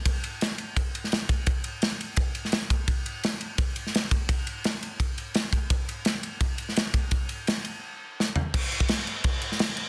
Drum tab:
CC |----------------|----------------|----------------|----------------|
RD |x-x-x-x-x-x-x-x-|x-x-x-x-x-x-x-x-|x-x-x-x-x-x-x-x-|x-x-x-x-x-x-x-x-|
SD |----o------oo---|----o------oo---|----o------oo---|----o-------o---|
FT |----------------|----------------|----------------|----------------|
BD |o-------o-----o-|o-------o-----o-|o-------o-----o-|o-------o-----o-|

CC |----------------|----------------|x-x-x-x-x-x-x-x-|
RD |x-x-x-x-x-x-x-x-|x-x-x-x---------|----------------|
SD |----o------oo---|----o-------o---|----o------oo---|
FT |----------------|--------------o-|----------------|
BD |o-------o-----o-|o---------------|o--o----o-------|